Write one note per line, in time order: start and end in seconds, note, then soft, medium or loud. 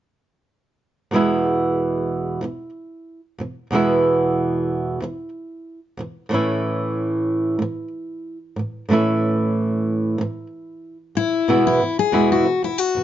1.11 2.40 E2 medium
1.11 2.41 B2 medium
1.11 2.44 E3 medium
1.11 2.43 G#3 medium
1.11 2.43 B3 medium
1.16 3.20 E4 medium
2.41 2.68 E2 soft
2.41 2.69 B2 medium
2.41 2.70 E3 medium
3.38 3.65 E2 soft
3.38 3.66 B2 soft
3.38 3.67 E3 soft
3.71 4.99 E2 medium
3.71 5.01 B2 medium
3.71 5.03 E3 medium
3.71 5.02 G#3 medium
3.71 5.02 B3 medium
3.75 5.79 E4 medium
5.00 5.27 E2 medium
5.00 5.28 B2 medium
5.00 5.29 E3 medium
5.97 6.24 E2 soft
5.97 6.25 B2 soft
5.97 6.26 E3 soft
6.29 7.58 A2 medium
6.29 7.62 E3 medium
6.29 7.61 A3 medium
6.29 7.61 C#4 medium
6.34 8.38 E4 medium
7.59 7.86 A2 soft
7.59 7.88 E3 medium
8.56 8.83 A2 soft
8.56 8.85 E3 soft
8.89 10.17 A2 medium
8.89 10.21 E3 medium
8.89 10.20 A3 medium
8.89 10.20 C#4 medium
8.93 10.96 E4 medium
10.18 10.45 A2 soft
10.18 10.46 E3 medium
11.15 11.42 A2 soft
11.15 11.44 E3 soft
11.15 11.63 E4 medium
11.48 11.79 E2 medium
11.48 11.80 B2 medium
11.48 11.81 E3 medium
11.48 11.81 G#3 medium
11.48 11.81 B3 medium
11.48 11.81 E4 medium
11.67 11.99 E4 medium
11.80 12.07 E2 soft
11.80 12.08 B2 soft
11.80 12.08 E3 soft
11.99 12.31 G#4 medium
12.12 12.43 E2 medium
12.12 12.45 B2 medium
12.12 12.45 E3 medium
12.12 12.45 G#3 medium
12.12 12.46 B3 medium
12.12 12.46 E4 medium
12.32 12.64 F#4 medium
12.44 12.61 E2 soft
12.44 12.63 B2 soft
12.44 12.64 E3 medium
12.62 12.88 E2 soft
12.62 12.89 B2 soft
12.62 12.89 E3 soft
12.62 12.78 E4 medium
12.78 13.04 F#4 medium
12.95 13.04 E2 soft
12.95 13.04 B2 soft
12.95 13.04 E3 soft